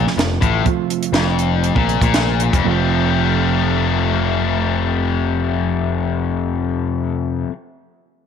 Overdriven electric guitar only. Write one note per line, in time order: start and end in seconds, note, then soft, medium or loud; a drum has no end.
0.08 muted overdriven electric guitar stroke medium
0.18 0.36 F2 medium
0.41 0.64 A2 medium
1.13 1.74 F2 medium
1.75 2.00 A#2 loud
2.03 2.53 A#2 medium
2.55 2.66 F2 medium
2.67 7.49 F2 medium
2.67 7.51 C3 medium
2.67 7.51 F3 medium
2.67 7.53 A3 medium
2.67 7.53 C4 medium